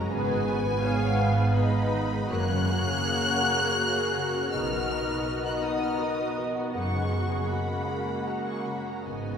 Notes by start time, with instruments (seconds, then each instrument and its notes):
Already playing: double bass section F#1, cello section F#2, harp F#2 C#3 F#3 A#3 F#4 G#4 A#4 F#5 G#5, viola section F#4, french horn section G#4, violin section A#4 A#5
0.10 double bass section G#1, cello section G#2, harp G#2, viola section B3, french horn section B3, violin section G#4 B4 G#5
0.29 harp D#3
0.47 harp F#4, violin section B4
0.65 harp G#4
0.82 viola section B3 F5, harp B4, violin section C#5
1.01 harp F#5
1.19 violin section B4, harp G#5
1.37 harp B4
1.55 viola section G#3 D#4, harp G#4, violin section B4 D#5 B5
1.74 harp F#4
1.93 harp D#3
2.13 harp B3
2.31 double bass section F#1, cello section F#2, harp F#2, viola section A#3 F#4, violin section A#3 C#5 F#6, french horn section G#4 A#4
2.50 harp C#3, violin section C#4
2.69 harp F#4, violin section F#4
2.86 harp G#4, violin section G#4
3.05 violin section F#4, harp C#5
3.23 violin section C#4, harp F#5
3.42 violin section A#3, harp G#5
3.61 violin section C#4
3.79 violin section F#4, harp G#4
3.97 harp F#4, violin section G#4
4.16 harp C#3, violin section F#4
4.34 harp A#3, violin section C#4
4.53 double bass section B1, cello section B2, harp B2, viola section B3, french horn section D#4, violin section D#4 D#5 F6
4.72 harp F#3, violin section F#4
4.90 harp D#4, violin section A#4
5.08 harp F#4, violin section B4
5.27 violin section A#4
5.44 violin section F#4 F#6, harp D#5
5.61 violin section D#4 D#6, harp F#5
5.80 violin section F#4 F6
5.99 harp F#4, violin section A#4 D#6
6.18 harp D#4, violin section B4
6.36 harp F#3, violin section A#4
6.55 harp A#3, violin section F#4
6.73 double bass section F#1, harp F#2, cello section F#2, french horn section G#3 G#4, violin section A#3 F#5 C#6, viola section F#4
6.92 harp C#3, violin section C#4
7.11 violin section F#4, harp F#4
7.29 violin section G#4, harp G#4
7.48 viola section A#3, violin section F#4 B5
7.66 violin section C#4
7.86 violin section A#3, harp G#5
8.05 violin section C#4, harp A#4
8.26 violin section F#4 A#5, harp G#4
8.46 harp C#4, violin section G#4 C#6
8.65 harp C#3, violin section F#4 B5
8.85 harp A#3, violin section C#4 A#5
9.06 double bass section G#1, harp G#2, cello section G#2, french horn section B3, violin section B3 D#5 G#5, viola section B3
9.27 harp D#3, violin section D#4